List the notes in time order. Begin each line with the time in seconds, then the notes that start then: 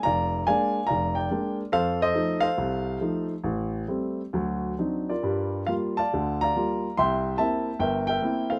0.03 F1 D5 F5 A#5
0.47 G#3 A#3 D4 D5 F5 G#5
0.87 F1 D5 F5 A#5
1.15 D5 G5
1.31 G#3 A#3 D4
1.72 F2 A4 C5 F5
2.02 A4 C5 D#5
2.14 F3 A3 D#4
2.41 A4 C5 F5
2.58 C2
3.01 F3 A3 D#4
3.44 A1
3.88 G3 A3 C4
4.33 D2 F#3
4.79 F#3 C4 D4 D#4
5.10 F4 A#4 D5
5.23 G2 G3
5.67 G3 A#3 F4 F5
5.97 D5 F5 A5
6.13 D2 D3
6.41 D5 F5 A#5
6.56 G3 A#3 F4
6.97 C2 E5 G5 C6
7.38 A#3 C4 E4 E5 A5
7.79 G1 A#4 E5 G5
8.07 A#4 E5 G5
8.22 A#3 C4 E4
8.50 A4 C5 F5